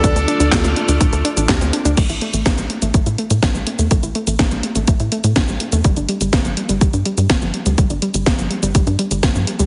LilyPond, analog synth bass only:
\new Staff \with { instrumentName = "Analog synth bass" } { \clef bass \time 4/4 \key g \mixolydian \tempo 4 = 124 d,16 d,16 r16 d,16 d,16 d,16 r16 d,16 d,,16 d,16 r16 a,,16 d,16 d,16 r16 d,16 | a,,16 a,,16 r16 a,,16 a,,16 a,,16 r16 a,,16 a,,16 a,16 r16 a,16 a,,16 a,,16 r16 e,16 | a,,16 a,,16 r16 a,,16 a,,16 a,,16 r16 a,,16 a,,16 a,16 r16 a,16 a,,16 a,,16 r16 e,16 | g,,16 g,,16 r16 g,,16 g,,16 g,,16 r16 g,,16 g,,16 g,16 r16 g,16 g,,16 g,,16 r16 d,16 |
g,,16 g,,16 r16 g,,16 g,,16 g,,16 r16 g,,16 g,,16 g,16 r16 g,,16 g,,16 g,16 r16 d,16 | }